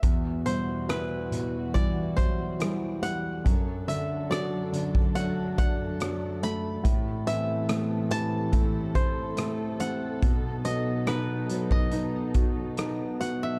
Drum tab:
HH |x-x-x-x-x-x-x-x-|x-x-x-x-x-x-x-x-|x-x-x-x-x-x-x-x-|x-x-x-x-x-x-x-x-|
SD |----r-------r---|----r-------r---|----r-------r---|----r-------r---|
BD |o-------o-o-----|o------o--o-----|o-------o-o-----|o------o--o-----|